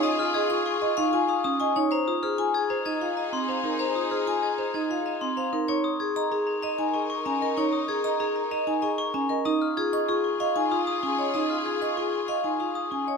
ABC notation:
X:1
M:6/4
L:1/8
Q:1/4=191
K:C#mix
V:1 name="Glockenspiel"
d' e' g' z c' c' c' z d' d' c' z | a _e' =f' z _a' ^a _a' z ^a =c' a z | a _e' =f' z _a' ^a _a' z ^a =c' a z | c' d' g' z a a a z c' c' a z |
c' d' g' z a a a z c' c' a z | d' e' g' z c' c' c' z d' d' c' z | d' e' g' z c' c' c' z d' d' c' z |]
V:2 name="Vibraphone"
d z G c' G z e g e z g c | =c z _A _a A z _e =f e z f ^A | =c z _A _a A z _e =f e z f ^A | c z G a G z d g d z g A |
c z G a G z d g d z g A | d z G c' G z e g e z g c | d z G c' G z e g e z g c |]
V:3 name="String section"
[EG]8- [EG]3 z | [_E_A]12- | [_E_A]8- [EA]3 z | [DA]12- |
[DA]8- [DA]3 z | [EG]12- | [EG]8- [EG]3 z |]
V:4 name="Marimba"
z E d E z d D E z C d D | z =F =c F z c _E F z =C c E | z =F =c F z c _E F z =C c E | D z G d G z d D G z C d |
D z G d G z d D G z C d | D z E d E z d D E z C d | D z E d E z d D E z C d |]